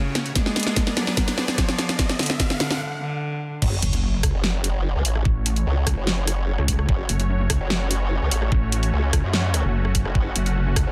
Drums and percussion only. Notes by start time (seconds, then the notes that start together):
0.15 snare, closed hi-hat
0.26 closed hi-hat
0.36 kick, snare, closed hi-hat
0.46 snare
0.56 snare, closed hi-hat
0.60 closed hi-hat
0.63 snare, closed hi-hat
0.76 kick, snare, closed hi-hat
0.87 snare
0.97 snare, closed hi-hat
1.07 snare
1.17 kick, snare, closed hi-hat
1.28 snare, closed hi-hat
1.38 snare
1.48 snare
1.58 kick, snare, closed hi-hat
1.69 snare
1.79 snare, closed hi-hat
1.89 snare, closed hi-hat
1.99 kick, snare, closed hi-hat
2.09 snare
2.19 snare, closed hi-hat
2.23 closed hi-hat
2.26 snare, closed hi-hat
2.40 kick, snare, closed hi-hat
2.50 snare
2.60 snare, closed hi-hat
2.71 snare
3.62 kick, crash
3.82 closed hi-hat
3.93 closed hi-hat
4.23 kick, cross-stick, closed hi-hat
4.44 snare
4.64 closed hi-hat
5.05 closed hi-hat
5.15 cross-stick
5.25 kick
5.46 closed hi-hat
5.56 closed hi-hat
5.87 kick, cross-stick, closed hi-hat
6.07 snare
6.27 cross-stick, closed hi-hat
6.58 cross-stick
6.68 kick, closed hi-hat
6.79 cross-stick
6.89 kick
7.09 closed hi-hat
7.20 closed hi-hat
7.50 kick, cross-stick, closed hi-hat
7.70 snare
7.91 closed hi-hat
8.31 closed hi-hat
8.42 cross-stick
8.52 kick
8.72 closed hi-hat
8.83 closed hi-hat
9.13 kick, cross-stick, closed hi-hat
9.34 snare
9.54 cross-stick, closed hi-hat
9.85 cross-stick
9.95 kick, closed hi-hat
10.05 cross-stick
10.15 kick
10.36 closed hi-hat
10.46 closed hi-hat
10.76 kick, cross-stick, closed hi-hat